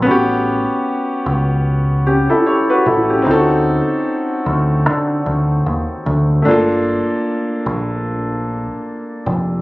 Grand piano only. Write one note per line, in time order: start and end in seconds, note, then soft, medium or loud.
0.02 3.20 B3 medium
0.02 2.02 C#4 medium
0.08 2.03 F#4 medium
0.08 2.04 G4 medium
2.07 2.29 C#4 medium
2.07 2.28 G4 medium
2.30 2.46 E4 medium
2.30 2.45 A4 medium
2.47 2.69 G4 medium
2.47 2.68 C#5 medium
2.70 2.86 F#4 medium
2.70 2.85 B4 medium
2.87 3.09 E4 medium
2.87 3.08 A4 medium
3.10 3.48 C#4 medium
3.10 3.47 G4 medium
3.22 6.40 C4 medium
3.22 6.41 D#4 medium
3.28 3.34 F4 medium
3.28 6.44 A4 medium
3.34 6.46 F#4 medium
6.42 6.52 A3 medium
6.42 9.61 D4 medium
6.48 9.62 A#3 medium
6.48 9.62 F4 medium
6.48 9.62 A4 medium